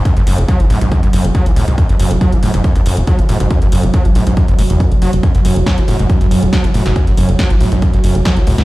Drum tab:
HH |xxoxxxoxxxoxxxox|xxoxxxoxxxoxxxox|xxoxxxoxxxoxxxox|xxoxxxoxxxoxxxox|
SD |----------------|----------------|----------------|----o-------o--o|
BD |o---o---o---o---|o---o---o---o---|o---o---o---o---|o---o---o---o---|

HH |xxoxxxoxxxoxxxox|
SD |----o-------o--o|
BD |o---o---o---o---|